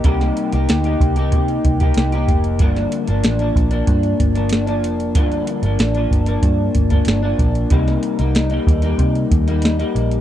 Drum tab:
HH |xxxxxxxxxxxxxxxx|xxxxxxxxxxxxxxxx|xxxxxxxxx-xxx-xx|xxxxxxxxxxxxxxxx|
SD |-o--o-------o---|-o--o-------o---|----o-------o---|-o--o-------o---|
BD |o-----o-o-oo--o-|o-----o-o-o-----|o-----o-o-oo--o-|o-----o-o-o-----|